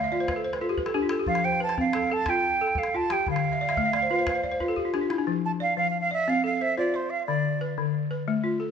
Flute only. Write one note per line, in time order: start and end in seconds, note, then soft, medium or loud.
0.00 0.40 F5 medium
1.28 1.46 F5 medium
1.45 1.61 G5 medium
1.63 1.77 A5 loud
1.81 2.15 F5 medium
2.13 2.31 A5 loud
2.29 2.80 G5 medium
2.79 2.98 F5 medium
2.96 3.13 A5 medium
3.12 3.28 G5 medium
3.31 4.92 F5 medium
5.45 5.51 A5 medium
5.62 5.77 F5 loud
5.78 5.88 F5 medium
5.90 6.00 F5 medium
6.01 6.11 F5 medium
6.13 6.31 E5 medium
6.30 6.45 F5 medium
6.46 6.63 F5 medium
6.62 6.77 E5 medium
6.78 6.97 D5 medium
6.96 7.12 C5 medium
7.10 7.26 F5 medium
7.27 7.62 D5 medium